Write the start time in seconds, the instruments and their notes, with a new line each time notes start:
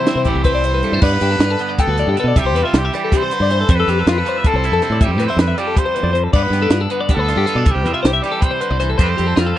Already playing: clean electric guitar C3 G3 E4, trumpet C5
0.06 overdriven electric guitar C3 E3 G3 C4 E4, clean electric guitar C4 E5, snare, closed hi-hat
0.15 fingered electric bass C3, clean electric guitar C5
0.25 fingered electric bass A1, clean electric guitar E3 A3 E4, overdriven electric guitar G3 C4 E4, trumpet G4, kick, closed hi-hat
0.35 fingered electric bass C2, clean electric guitar G4
0.44 clean electric guitar C4 B4, trumpet C5, kick, closed hi-hat
0.55 clean electric guitar D5
0.63 overdriven electric guitar G3 C4 E4, clean electric guitar C5, closed hi-hat
0.74 clean electric guitar B4
0.83 clean electric guitar G2 G3 A4, closed hi-hat
0.92 fingered electric bass G2, clean electric guitar A3 C5
1.02 clean electric guitar G2 B3 D5, fingered electric bass G2, trumpet B4, kick, crash
1.13 clean electric guitar B4
1.21 fingered electric bass G2, clean electric guitar D4 G4, closed hi-hat
1.31 clean electric guitar A4
1.39 fingered electric bass G2, clean electric guitar F4, snare, closed hi-hat
1.50 clean electric guitar A4
1.59 clean electric guitar D3 B3 B4, closed hi-hat
1.69 clean electric guitar D5
1.79 clean electric guitar G2 G4, trumpet A4, kick, closed hi-hat
1.87 fingered electric bass D2, clean electric guitar B4
1.97 clean electric guitar A2 D5, closed hi-hat
2.07 fingered electric bass G2, clean electric guitar G4
2.16 clean electric guitar B2 B4, trumpet A4, closed hi-hat
2.24 fingered electric bass B2
2.28 clean electric guitar D5
2.36 fingered electric bass C2, clean electric guitar C3 G3 E5, trumpet G4, kick, closed hi-hat
2.44 fingered electric bass C2, clean electric guitar C5
2.54 fingered electric bass E2, clean electric guitar C4 B4, snare, closed hi-hat
2.63 trumpet F4, clean electric guitar E5
2.73 fingered electric bass C2, clean electric guitar C5, snare, closed hi-hat
2.78 trumpet G4
2.85 clean electric guitar E5
2.93 clean electric guitar E3 G3 D5, trumpet G4, snare, closed hi-hat
3.04 clean electric guitar A4
3.12 clean electric guitar C3 G4, kick, snare, closed hi-hat
3.17 trumpet C5
3.23 clean electric guitar C5
3.31 clean electric guitar D3 B4, closed hi-hat
3.40 fingered electric bass G2, clean electric guitar D5
3.50 clean electric guitar E3 C5, closed hi-hat
3.61 clean electric guitar A4
3.69 clean electric guitar F2 G3 C5, fingered electric bass F2, kick, closed hi-hat
3.75 trumpet B4
3.80 clean electric guitar A4
3.88 fingered electric bass F2, clean electric guitar C4 G4, snare, closed hi-hat
3.99 clean electric guitar A4
4.07 fingered electric bass F2, clean electric guitar F4, snare, closed hi-hat
4.11 trumpet B4
4.18 clean electric guitar A4
4.25 clean electric guitar F3 G3 C5, closed hi-hat
4.38 clean electric guitar E5
4.44 clean electric guitar C4 A4, trumpet A4, kick, closed hi-hat
4.54 fingered electric bass C2, clean electric guitar C5
4.64 clean electric guitar E4 E5, closed hi-hat
4.72 fingered electric bass F2, clean electric guitar A4
4.82 clean electric guitar C3 C4 C5, snare, closed hi-hat
4.90 fingered electric bass A2, clean electric guitar D5
5.01 clean electric guitar F2 G3 E5, trumpet G4, kick, closed hi-hat
5.08 fingered electric bass F2, clean electric guitar C5
5.18 fingered electric bass A2, clean electric guitar B4, snare, closed hi-hat
5.22 clean electric guitar C4
5.27 trumpet C5, clean electric guitar E5
5.37 fingered electric bass F2, trumpet B4, clean electric guitar C5, snare, closed hi-hat
5.48 clean electric guitar E5
5.58 clean electric guitar F3 G3 D5, trumpet G4, closed hi-hat
5.67 clean electric guitar A4
5.76 clean electric guitar G4, trumpet C5, kick, closed hi-hat
5.86 clean electric guitar C5
5.95 clean electric guitar E2 B4, closed hi-hat
6.03 fingered electric bass F2, clean electric guitar D5
6.13 clean electric guitar F2 C5, closed hi-hat
6.24 clean electric guitar A4
6.33 fingered electric bass G2, clean electric guitar G2 B3 D5, trumpet B4, kick, crash
6.43 clean electric guitar B4
6.50 fingered electric bass G2, clean electric guitar B3 G4, snare, closed hi-hat
6.62 clean electric guitar D4 A4
6.70 fingered electric bass G2, clean electric guitar F4, snare, closed hi-hat
6.81 clean electric guitar A4
6.90 clean electric guitar D3 B3 B4, closed hi-hat
7.01 clean electric guitar D5
7.09 clean electric guitar D4 G4, kick, snare, closed hi-hat
7.15 fingered electric bass D2, trumpet A4
7.19 clean electric guitar B4
7.28 clean electric guitar F4 D5, snare, closed hi-hat
7.36 fingered electric bass G2, clean electric guitar G4
7.46 clean electric guitar G2 B3 B4, closed hi-hat
7.55 fingered electric bass B2, clean electric guitar D4 D5
7.65 fingered electric bass C2, clean electric guitar C3 G3 E5, kick, closed hi-hat
7.71 trumpet G4, clean electric guitar C5
7.76 fingered electric bass C2
7.84 fingered electric bass E2, clean electric guitar C4 B4, closed hi-hat
7.94 trumpet F4, clean electric guitar E5
8.03 fingered electric bass C2, trumpet G4, clean electric guitar C5, snare, closed hi-hat
8.13 clean electric guitar E5
8.22 clean electric guitar E3 G3 D5, trumpet G4, snare, closed hi-hat
8.32 clean electric guitar A4
8.41 clean electric guitar C3 G4, trumpet C5, kick, closed hi-hat
8.51 clean electric guitar C5
8.61 clean electric guitar D3 B4, closed hi-hat
8.70 fingered electric bass C2, clean electric guitar D5
8.80 clean electric guitar E3 C5, snare, closed hi-hat
8.90 clean electric guitar A4
8.98 clean electric guitar F2 F3 G3 C4 G4 C5, fingered electric bass F2, trumpet B4, kick, closed hi-hat
9.08 clean electric guitar A4, trumpet C5
9.17 fingered electric bass F2, clean electric guitar C4 G4, closed hi-hat
9.26 clean electric guitar A4
9.36 fingered electric bass F2, clean electric guitar F4, trumpet F4, snare, closed hi-hat
9.47 clean electric guitar A4